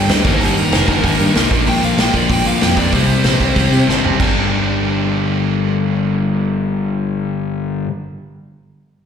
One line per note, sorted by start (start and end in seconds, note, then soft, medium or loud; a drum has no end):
0.07 0.26 D2 medium
0.07 0.23 G2 medium
0.07 0.23 D3 medium
0.07 0.24 G3 medium
0.07 0.25 A#3 medium
0.07 0.24 D4 medium
0.07 snare loud
0.07 open hi-hat medium
0.24 0.35 G1 medium
0.24 0.40 G2 medium
0.24 0.40 D#3 medium
0.24 0.39 G3 medium
0.24 0.40 A#3 medium
0.24 0.40 D#4 medium
0.24 0.39 D#4 loud
0.24 0.43 C5 medium
0.24 kick loud
0.24 open hi-hat medium
0.40 0.61 G1 medium
0.40 0.73 G2 medium
0.40 0.72 D#3 medium
0.40 0.72 G3 medium
0.40 0.72 A#3 medium
0.40 0.70 D#4 loud
0.40 0.57 G4 medium
0.40 0.57 A#4 medium
0.40 open hi-hat medium
0.57 1.49 A#4 medium
0.57 open hi-hat medium
0.71 0.82 F1 medium
0.71 0.85 G2 medium
0.71 0.86 D#3 medium
0.71 0.87 G3 medium
0.71 0.88 A#3 medium
0.71 0.88 D#4 medium
0.71 snare loud
0.71 open hi-hat medium
0.86 0.98 G1 medium
0.86 1.04 G2 medium
0.86 1.04 D#3 medium
0.86 1.03 G3 medium
0.86 1.02 A#3 medium
0.86 1.02 D#4 medium
0.86 kick medium
0.86 open hi-hat medium
1.03 1.14 G1 medium
1.03 1.35 G2 medium
1.03 1.34 D#3 medium
1.03 1.34 G3 medium
1.03 1.33 A#3 loud
1.03 1.32 D#4 loud
1.03 kick medium
1.03 open hi-hat medium
1.19 1.30 G2 medium
1.19 open hi-hat medium
1.34 1.46 C2 medium
1.34 1.50 G2 medium
1.34 1.50 D#3 medium
1.34 1.50 G3 medium
1.34 1.49 A#3 medium
1.34 1.49 D#4 medium
1.34 snare loud
1.34 open hi-hat medium
1.50 1.61 A#1 medium
1.50 1.67 A#2 medium
1.50 1.67 D3 medium
1.50 1.66 F3 loud
1.50 1.66 A#3 medium
1.50 1.65 D4 loud
1.50 kick medium
1.50 open hi-hat medium
1.66 1.77 A#1 medium
1.66 1.98 A#2 medium
1.66 1.97 D3 medium
1.66 1.97 F3 medium
1.66 1.96 A#3 loud
1.66 1.96 D4 medium
1.66 1.83 G5 loud
1.66 open hi-hat medium
1.83 1.93 A#1 medium
1.83 2.00 F5 medium
1.83 open hi-hat soft
1.97 2.08 A#1 medium
1.97 2.12 A#2 medium
1.97 2.12 D3 medium
1.97 2.13 F3 medium
1.97 2.14 A#3 medium
1.97 2.14 D4 medium
1.97 2.14 G5 medium
1.97 snare loud
1.97 open hi-hat medium
2.13 2.24 A#1 medium
2.13 2.31 A#2 medium
2.13 2.30 D3 medium
2.13 2.30 F3 medium
2.13 2.29 A#3 medium
2.13 2.28 D4 medium
2.13 2.30 D5 medium
2.13 kick medium
2.13 open hi-hat medium
2.29 2.40 A#1 medium
2.29 2.62 A#2 medium
2.29 2.61 D3 medium
2.29 2.61 F3 loud
2.29 2.60 A#3 medium
2.29 2.59 D4 loud
2.29 2.46 G5 medium
2.29 kick medium
2.29 open hi-hat medium
2.45 2.56 A#1 medium
2.45 2.62 F5 medium
2.45 open hi-hat medium
2.60 2.73 F2 medium
2.60 2.75 A#2 medium
2.60 2.76 D3 medium
2.60 2.76 F3 medium
2.60 2.77 A#3 medium
2.60 2.77 D4 medium
2.60 2.78 G5 medium
2.60 snare loud
2.60 open hi-hat medium
2.76 2.88 F2 medium
2.76 2.92 A#2 medium
2.76 2.91 D3 medium
2.76 2.92 F3 medium
2.76 2.92 A#3 medium
2.76 2.93 D4 medium
2.76 2.93 D5 medium
2.76 kick medium
2.76 open hi-hat medium
2.91 3.13 C2 medium
2.91 3.22 C3 medium
2.91 3.23 G3 medium
2.91 3.24 C4 medium
2.91 3.24 E4 medium
2.91 3.86 C5 medium
2.91 kick medium
2.91 open hi-hat medium
3.08 open hi-hat soft
3.24 3.35 A#1 medium
3.24 3.40 C3 medium
3.24 3.40 G3 medium
3.24 3.39 C4 medium
3.24 3.39 E4 medium
3.24 snare medium
3.24 open hi-hat medium
3.40 3.51 C2 medium
3.40 3.54 C3 medium
3.40 3.55 G3 medium
3.40 3.56 C4 medium
3.40 3.57 E4 medium
3.40 kick medium
3.40 open hi-hat soft
3.56 3.67 C2 medium
3.56 3.86 C3 medium
3.56 3.87 G3 medium
3.56 3.87 C4 medium
3.56 3.88 E4 medium
3.56 kick medium
3.56 open hi-hat medium
3.72 3.83 C3 medium
3.72 open hi-hat medium
3.88 3.99 G1 medium
3.88 4.04 C3 medium
3.88 4.04 G3 medium
3.88 4.03 C4 medium
3.88 4.02 E4 medium
3.88 snare medium
4.03 4.15 F#1 medium
4.03 4.19 C3 medium
4.03 4.19 G3 medium
4.03 4.19 C4 medium
4.03 4.19 E4 medium
4.03 floor tom medium
4.19 7.84 G1 medium
4.19 7.87 G2 medium
4.19 7.88 D3 medium
4.19 7.89 G3 medium
4.19 7.90 A#3 medium
4.19 kick medium
4.19 crash medium
4.23 7.91 D4 medium